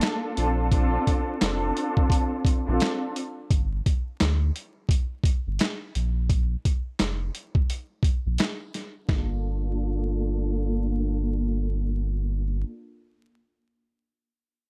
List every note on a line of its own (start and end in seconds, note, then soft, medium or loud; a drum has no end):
0.00 0.36 A#3 loud
0.00 0.36 D4 medium
0.00 0.36 F4 medium
0.00 0.37 A4 loud
0.00 snare loud
0.00 clap medium
0.00 closed hi-hat loud
0.36 0.98 A#1 medium
0.36 0.69 C4 loud
0.36 0.69 D4 medium
0.36 0.70 F4 medium
0.36 0.70 A4 loud
0.36 closed hi-hat medium
0.71 1.37 C4 loud
0.71 1.37 D4 medium
0.71 1.37 F4 medium
0.71 1.38 A4 loud
0.71 kick loud
0.71 closed hi-hat medium
1.07 kick medium
1.07 closed hi-hat medium
1.40 1.72 F1 medium
1.40 2.55 C4 medium
1.40 2.55 D4 medium
1.40 2.56 F4 medium
1.40 2.56 A4 loud
1.40 snare loud
1.40 clap medium
1.40 closed hi-hat medium
1.77 closed hi-hat medium
1.97 kick loud
2.10 kick medium
2.10 closed hi-hat medium
2.45 kick medium
2.45 closed hi-hat medium
2.66 2.79 A#1 loud
2.66 3.12 C4 loud
2.66 3.12 D4 medium
2.66 3.13 F4 medium
2.66 3.13 A4 loud
2.80 snare loud
2.80 clap medium
2.80 closed hi-hat loud
3.16 closed hi-hat medium
3.51 3.81 G1 loud
3.51 kick loud
3.51 closed hi-hat medium
3.86 kick medium
3.86 closed hi-hat medium
4.21 4.51 D2 loud
4.21 snare loud
4.21 clap medium
4.21 closed hi-hat medium
4.56 closed hi-hat medium
4.89 kick medium
4.89 closed hi-hat medium
5.24 kick medium
5.24 closed hi-hat medium
5.47 5.59 G1 medium
5.59 snare loud
5.59 clap medium
5.59 closed hi-hat medium
5.95 6.56 A#1 loud
5.95 closed hi-hat medium
6.30 kick loud
6.30 closed hi-hat medium
6.65 kick medium
6.65 closed hi-hat medium
7.00 7.30 F1 medium
7.00 snare loud
7.00 clap medium
7.00 closed hi-hat medium
7.35 closed hi-hat medium
7.55 kick medium
7.70 closed hi-hat medium
8.03 kick medium
8.03 closed hi-hat medium
8.26 8.38 A#1 medium
8.38 snare loud
8.38 clap medium
8.38 closed hi-hat loud
8.74 snare soft
8.74 closed hi-hat medium
9.08 12.64 G1 loud
9.08 12.64 A#3 medium
9.08 12.64 D4 medium
9.08 12.64 F4 medium
9.08 12.64 A4 loud
9.08 kick loud
9.08 snare medium